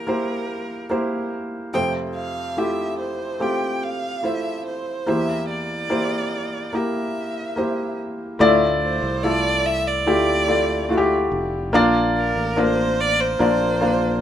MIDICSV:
0, 0, Header, 1, 4, 480
1, 0, Start_track
1, 0, Tempo, 833333
1, 1000, Time_signature, 4, 2, 24, 8
1, 8186, End_track
2, 0, Start_track
2, 0, Title_t, "Violin"
2, 0, Program_c, 0, 40
2, 0, Note_on_c, 0, 70, 63
2, 764, Note_off_c, 0, 70, 0
2, 1002, Note_on_c, 0, 79, 81
2, 1110, Note_off_c, 0, 79, 0
2, 1242, Note_on_c, 0, 77, 72
2, 1488, Note_on_c, 0, 76, 73
2, 1497, Note_off_c, 0, 77, 0
2, 1721, Note_off_c, 0, 76, 0
2, 1725, Note_on_c, 0, 72, 70
2, 1970, Note_on_c, 0, 79, 65
2, 1979, Note_off_c, 0, 72, 0
2, 2212, Note_on_c, 0, 77, 76
2, 2221, Note_off_c, 0, 79, 0
2, 2451, Note_on_c, 0, 76, 71
2, 2459, Note_off_c, 0, 77, 0
2, 2685, Note_off_c, 0, 76, 0
2, 2689, Note_on_c, 0, 72, 65
2, 2930, Note_on_c, 0, 76, 76
2, 2938, Note_off_c, 0, 72, 0
2, 3165, Note_off_c, 0, 76, 0
2, 3169, Note_on_c, 0, 74, 73
2, 3889, Note_on_c, 0, 76, 58
2, 3897, Note_off_c, 0, 74, 0
2, 4604, Note_off_c, 0, 76, 0
2, 5084, Note_on_c, 0, 72, 80
2, 5317, Note_on_c, 0, 74, 98
2, 5325, Note_off_c, 0, 72, 0
2, 5564, Note_on_c, 0, 76, 99
2, 5573, Note_off_c, 0, 74, 0
2, 5689, Note_on_c, 0, 74, 84
2, 5697, Note_off_c, 0, 76, 0
2, 6404, Note_off_c, 0, 74, 0
2, 7013, Note_on_c, 0, 70, 79
2, 7250, Note_on_c, 0, 72, 92
2, 7259, Note_off_c, 0, 70, 0
2, 7490, Note_on_c, 0, 74, 101
2, 7499, Note_off_c, 0, 72, 0
2, 7608, Note_on_c, 0, 72, 91
2, 7617, Note_off_c, 0, 74, 0
2, 8186, Note_off_c, 0, 72, 0
2, 8186, End_track
3, 0, Start_track
3, 0, Title_t, "Felt piano"
3, 0, Program_c, 1, 0
3, 0, Control_c, 1, 64, 127
3, 0, Note_on_c, 1, 40, 45
3, 0, Note_on_c, 1, 52, 43
3, 0, Note_on_c, 1, 58, 50
3, 0, Note_on_c, 1, 64, 44
3, 0, Note_on_c, 1, 67, 44
3, 0, Note_on_c, 1, 72, 55
3, 40, Note_off_c, 1, 58, 0
3, 40, Note_on_c, 1, 58, 49
3, 43, Note_off_c, 1, 64, 0
3, 43, Note_on_c, 1, 64, 41
3, 46, Note_off_c, 1, 67, 0
3, 46, Note_on_c, 1, 67, 43
3, 50, Note_off_c, 1, 72, 0
3, 50, Note_on_c, 1, 72, 55
3, 496, Note_off_c, 1, 58, 0
3, 497, Note_off_c, 1, 64, 0
3, 499, Note_off_c, 1, 67, 0
3, 501, Note_off_c, 1, 72, 0
3, 516, Note_on_c, 1, 58, 54
3, 519, Note_on_c, 1, 64, 50
3, 521, Note_on_c, 1, 67, 46
3, 525, Note_on_c, 1, 72, 58
3, 974, Note_off_c, 1, 58, 0
3, 975, Note_off_c, 1, 64, 0
3, 977, Note_off_c, 1, 67, 0
3, 978, Note_off_c, 1, 52, 0
3, 978, Note_off_c, 1, 72, 0
3, 979, Note_off_c, 1, 40, 0
3, 1000, Note_on_c, 1, 57, 48
3, 1002, Note_on_c, 1, 60, 49
3, 1003, Note_on_c, 1, 41, 43
3, 1005, Note_on_c, 1, 48, 42
3, 1006, Note_on_c, 1, 65, 43
3, 1007, Control_c, 1, 64, 0
3, 1008, Note_on_c, 1, 72, 60
3, 1096, Control_c, 1, 64, 127
3, 1456, Note_off_c, 1, 57, 0
3, 1457, Note_off_c, 1, 60, 0
3, 1459, Note_off_c, 1, 65, 0
3, 1460, Note_off_c, 1, 72, 0
3, 1479, Note_on_c, 1, 57, 48
3, 1483, Note_on_c, 1, 64, 47
3, 1485, Note_on_c, 1, 65, 47
3, 1487, Note_on_c, 1, 67, 58
3, 1936, Note_off_c, 1, 57, 0
3, 1937, Note_off_c, 1, 64, 0
3, 1938, Note_off_c, 1, 65, 0
3, 1939, Note_off_c, 1, 67, 0
3, 1955, Note_on_c, 1, 57, 50
3, 1960, Note_on_c, 1, 60, 46
3, 1965, Note_on_c, 1, 65, 46
3, 1965, Note_on_c, 1, 67, 55
3, 2413, Note_off_c, 1, 57, 0
3, 2416, Note_off_c, 1, 60, 0
3, 2418, Note_off_c, 1, 65, 0
3, 2418, Note_off_c, 1, 67, 0
3, 2435, Note_on_c, 1, 57, 39
3, 2439, Note_on_c, 1, 64, 45
3, 2442, Note_on_c, 1, 65, 46
3, 2446, Note_on_c, 1, 72, 46
3, 2894, Note_off_c, 1, 57, 0
3, 2896, Note_off_c, 1, 64, 0
3, 2897, Note_off_c, 1, 65, 0
3, 2898, Note_off_c, 1, 41, 0
3, 2899, Note_off_c, 1, 72, 0
3, 2900, Note_off_c, 1, 48, 0
3, 2918, Note_on_c, 1, 58, 46
3, 2921, Note_on_c, 1, 52, 44
3, 2921, Note_on_c, 1, 64, 43
3, 2923, Note_on_c, 1, 40, 43
3, 2924, Note_on_c, 1, 67, 45
3, 2927, Control_c, 1, 64, 0
3, 2927, Note_on_c, 1, 72, 56
3, 3029, Control_c, 1, 64, 127
3, 3375, Note_off_c, 1, 58, 0
3, 3376, Note_off_c, 1, 64, 0
3, 3378, Note_off_c, 1, 67, 0
3, 3380, Note_off_c, 1, 72, 0
3, 3397, Note_on_c, 1, 58, 56
3, 3397, Note_on_c, 1, 64, 52
3, 3401, Note_on_c, 1, 67, 42
3, 3404, Note_on_c, 1, 72, 57
3, 3854, Note_off_c, 1, 58, 0
3, 3854, Note_off_c, 1, 64, 0
3, 3856, Note_off_c, 1, 67, 0
3, 3858, Note_off_c, 1, 72, 0
3, 3875, Note_on_c, 1, 58, 50
3, 3881, Note_on_c, 1, 64, 43
3, 3885, Note_on_c, 1, 67, 46
3, 3886, Note_on_c, 1, 70, 58
3, 4334, Note_off_c, 1, 58, 0
3, 4336, Note_off_c, 1, 64, 0
3, 4338, Note_off_c, 1, 67, 0
3, 4339, Note_off_c, 1, 70, 0
3, 4355, Note_on_c, 1, 58, 41
3, 4362, Note_on_c, 1, 64, 41
3, 4363, Note_on_c, 1, 67, 41
3, 4367, Note_on_c, 1, 72, 49
3, 4814, Note_off_c, 1, 58, 0
3, 4817, Note_off_c, 1, 64, 0
3, 4818, Note_off_c, 1, 40, 0
3, 4818, Note_off_c, 1, 52, 0
3, 4818, Note_off_c, 1, 67, 0
3, 4819, Note_off_c, 1, 72, 0
3, 4834, Note_on_c, 1, 57, 92
3, 4838, Note_on_c, 1, 45, 64
3, 4839, Note_on_c, 1, 64, 87
3, 4842, Note_on_c, 1, 65, 87
3, 4843, Note_on_c, 1, 74, 116
3, 4847, Control_c, 1, 64, 0
3, 4960, Control_c, 1, 64, 127
3, 5293, Note_off_c, 1, 57, 0
3, 5296, Note_off_c, 1, 64, 0
3, 5297, Note_off_c, 1, 65, 0
3, 5298, Note_off_c, 1, 74, 0
3, 5317, Note_on_c, 1, 57, 63
3, 5321, Note_on_c, 1, 64, 63
3, 5324, Note_on_c, 1, 65, 61
3, 5329, Note_on_c, 1, 69, 70
3, 5536, Note_off_c, 1, 45, 0
3, 5775, Note_off_c, 1, 57, 0
3, 5776, Note_off_c, 1, 64, 0
3, 5778, Note_off_c, 1, 65, 0
3, 5780, Note_off_c, 1, 69, 0
3, 5797, Note_on_c, 1, 57, 65
3, 5799, Note_on_c, 1, 64, 60
3, 5801, Note_on_c, 1, 65, 60
3, 5804, Note_on_c, 1, 67, 80
3, 6026, Note_off_c, 1, 57, 0
3, 6028, Note_off_c, 1, 64, 0
3, 6029, Note_off_c, 1, 65, 0
3, 6030, Note_off_c, 1, 67, 0
3, 6035, Note_on_c, 1, 57, 60
3, 6037, Note_on_c, 1, 64, 52
3, 6040, Note_on_c, 1, 65, 55
3, 6044, Note_on_c, 1, 74, 64
3, 6263, Note_off_c, 1, 57, 0
3, 6267, Note_off_c, 1, 64, 0
3, 6268, Note_off_c, 1, 65, 0
3, 6270, Note_off_c, 1, 74, 0
3, 6272, Note_on_c, 1, 57, 66
3, 6277, Note_on_c, 1, 64, 56
3, 6280, Note_on_c, 1, 65, 54
3, 6283, Note_on_c, 1, 66, 62
3, 6319, Note_off_c, 1, 66, 0
3, 6322, Note_on_c, 1, 67, 85
3, 6732, Note_off_c, 1, 57, 0
3, 6735, Note_off_c, 1, 64, 0
3, 6736, Note_off_c, 1, 65, 0
3, 6756, Note_on_c, 1, 58, 96
3, 6757, Note_off_c, 1, 67, 0
3, 6763, Note_on_c, 1, 62, 97
3, 6764, Note_on_c, 1, 65, 101
3, 6768, Control_c, 1, 64, 0
3, 6769, Note_on_c, 1, 74, 117
3, 6853, Control_c, 1, 64, 127
3, 7214, Note_off_c, 1, 58, 0
3, 7217, Note_off_c, 1, 62, 0
3, 7218, Note_off_c, 1, 65, 0
3, 7221, Note_off_c, 1, 74, 0
3, 7237, Note_on_c, 1, 58, 73
3, 7240, Note_on_c, 1, 62, 61
3, 7242, Note_on_c, 1, 65, 68
3, 7247, Note_on_c, 1, 70, 74
3, 7695, Note_off_c, 1, 58, 0
3, 7696, Note_off_c, 1, 62, 0
3, 7697, Note_off_c, 1, 65, 0
3, 7699, Note_off_c, 1, 70, 0
3, 7714, Note_on_c, 1, 58, 73
3, 7717, Note_on_c, 1, 62, 59
3, 7720, Note_on_c, 1, 65, 65
3, 7724, Note_on_c, 1, 74, 71
3, 7945, Note_off_c, 1, 58, 0
3, 7946, Note_off_c, 1, 62, 0
3, 7948, Note_off_c, 1, 65, 0
3, 7950, Note_off_c, 1, 74, 0
3, 7953, Note_on_c, 1, 58, 60
3, 7955, Note_on_c, 1, 62, 55
3, 7958, Note_on_c, 1, 65, 61
3, 7962, Note_on_c, 1, 77, 65
3, 8184, Note_off_c, 1, 58, 0
3, 8185, Note_off_c, 1, 62, 0
3, 8186, Note_off_c, 1, 65, 0
3, 8186, Note_off_c, 1, 77, 0
3, 8186, End_track
4, 0, Start_track
4, 0, Title_t, "Fingered electric bass"
4, 0, Program_c, 2, 33
4, 4839, Note_on_c, 2, 38, 89
4, 5177, Note_off_c, 2, 38, 0
4, 5198, Note_on_c, 2, 36, 90
4, 5797, Note_off_c, 2, 36, 0
4, 5797, Note_on_c, 2, 38, 97
4, 6495, Note_off_c, 2, 38, 0
4, 6518, Note_on_c, 2, 29, 78
4, 6761, Note_off_c, 2, 29, 0
4, 6761, Note_on_c, 2, 34, 101
4, 7098, Note_off_c, 2, 34, 0
4, 7118, Note_on_c, 2, 33, 87
4, 7696, Note_off_c, 2, 33, 0
4, 7720, Note_on_c, 2, 34, 105
4, 8186, Note_off_c, 2, 34, 0
4, 8186, End_track
0, 0, End_of_file